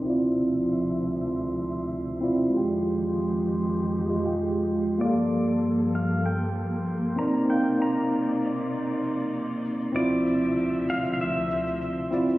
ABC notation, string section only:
X:1
M:4/4
L:1/8
Q:"Swing 16ths" 1/4=97
K:Dphr
V:1 name="String section" clef=bass
[D,,C,F,=e]8 | [F,,E,_A,G]8 | [G,,F,B,A]6- [G,,F,B,A] [C,Ed]- | [C,Ed]8 |
[D,,C,F,=e]8 |]